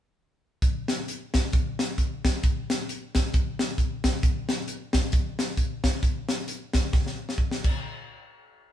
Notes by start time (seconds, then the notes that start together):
0.62 kick, closed hi-hat
0.88 snare, closed hi-hat
1.08 closed hi-hat
1.34 kick, snare, closed hi-hat
1.53 kick, closed hi-hat
1.79 snare, closed hi-hat
1.98 kick, closed hi-hat
2.25 kick, snare, closed hi-hat
2.43 kick, closed hi-hat
2.70 snare, closed hi-hat
2.89 closed hi-hat
3.15 kick, snare, closed hi-hat
3.33 kick, closed hi-hat
3.59 snare, closed hi-hat
3.78 kick, closed hi-hat
4.04 kick, snare, closed hi-hat
4.23 kick, closed hi-hat
4.49 snare, closed hi-hat
4.68 closed hi-hat
4.93 kick, snare, closed hi-hat
5.12 kick, closed hi-hat
5.39 snare, closed hi-hat
5.57 kick, closed hi-hat
5.84 kick, snare, closed hi-hat
6.03 kick, closed hi-hat
6.29 snare, closed hi-hat
6.48 closed hi-hat
6.74 kick, snare, closed hi-hat
6.93 kick, snare
7.07 snare
7.29 snare
7.38 kick
7.51 snare
7.64 kick, crash